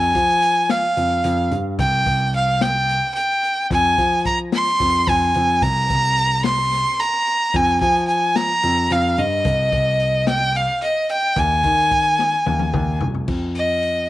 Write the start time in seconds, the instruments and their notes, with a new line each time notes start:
Already playing: grand piano F2, violin G#5
0.15 grand piano F3, kick, closed hi-hat
0.42 closed hi-hat
0.69 violin F5, snare, closed hi-hat
0.97 grand piano F2, closed hi-hat
1.24 grand piano F2, closed hi-hat
1.51 grand piano G2, closed hi-hat
1.79 grand piano C2, violin G5, kick, closed hi-hat
2.06 grand piano C2, kick, closed hi-hat
2.34 violin F5, closed hi-hat
2.61 violin G5, snare, closed hi-hat
2.89 closed hi-hat
3.15 violin G5, closed hi-hat
3.44 closed hi-hat
3.70 grand piano F2, violin G#5, kick, closed hi-hat
3.98 grand piano F3, kick, closed hi-hat
4.25 violin A#5, kick, closed hi-hat
4.52 violin C6, snare, closed hi-hat
4.80 grand piano F2, kick, closed hi-hat
5.07 grand piano F2, violin G#5, kick, closed hi-hat
5.34 grand piano F2, closed hi-hat
5.62 grand piano C2, violin A#5, kick, closed hi-hat
5.90 grand piano C2, kick, snare, closed hi-hat
6.17 closed hi-hat
6.44 violin C6, snare, closed hi-hat
6.72 snare, closed hi-hat
6.99 violin A#5, closed hi-hat
7.27 closed hi-hat
7.54 grand piano F2, violin G#5, kick, closed hi-hat
7.81 grand piano F3, violin G#5, kick, closed hi-hat
8.08 violin G#5, closed hi-hat
8.36 violin A#5, snare, closed hi-hat
8.63 grand piano F2, closed hi-hat
8.90 grand piano F2, violin F5, closed hi-hat
9.18 grand piano G2, violin D#5, closed hi-hat
9.45 grand piano C2, kick, closed hi-hat
9.72 grand piano C2, kick, closed hi-hat
10.00 closed hi-hat
10.27 violin G5, snare, closed hi-hat
10.55 violin F5, closed hi-hat
10.82 violin D#5, closed hi-hat
11.09 violin G5, closed hi-hat
11.36 grand piano D#2, violin G#5, kick, closed hi-hat
11.64 grand piano D#3, kick, closed hi-hat
11.91 kick, closed hi-hat
12.19 snare
12.46 grand piano D#2, high tom
12.59 high tom
12.74 grand piano D#2, kick, mid tom
13.01 grand piano C2, floor tom
13.15 floor tom
13.28 grand piano F2, kick, crash
13.55 violin D#5, closed hi-hat
13.83 closed hi-hat